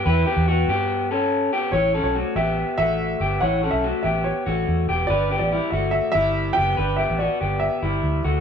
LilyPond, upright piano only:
\new Staff \with { instrumentName = "Upright piano" } { \time 4/4 \key g \lydian \tempo 4 = 143 g''2. r4 | cis''8. cis''8. e''4 e''4. | fis''8. e''8. e''8 cis''4. r8 | d''8. d''8. e''8 e''8 e''4 g''8~ |
g''8 e''8 d''4 e''4. r8 | }